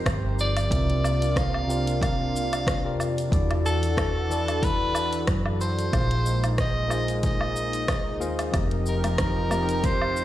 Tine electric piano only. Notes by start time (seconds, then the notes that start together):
Already playing: F3 C4 G4 A#4 D#5
0.69 C3 C4 F4 A#4 E5
1.68 C3 C4 F4 A#4 D5
2.84 C3 C4 F4 A#4 D5
3.30 E3 E4 F#4 A4 D5
4.29 E3 E4 F#4 A4 D5
5.92 A#3 F4 G#4 C5 F5
6.88 A#3 F4 G#4 C5 D#5
8.20 A#3 F4 G#4 C5 F5
8.51 F3 C4 G4 A#4 D#5
9.49 F3 C4 G4 A#4 D#5